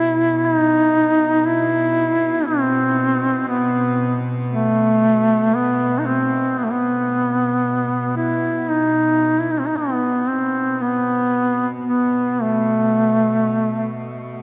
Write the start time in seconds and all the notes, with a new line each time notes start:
Already playing: B2 E4
0.45 D#4
1.45 E4
2.46 C4
3.48 B3
4.52 A3
5.55 B3
5.99 D#4
6.06 C4
6.58 B3
6.64 A3
6.72 B3
8.16 E4
8.70 D#4
9.39 E4
9.51 D#4
9.60 C4
9.67 D#4
9.77 B2 B3
10.29 C4
10.81 B3
11.87 B3
12.42 A3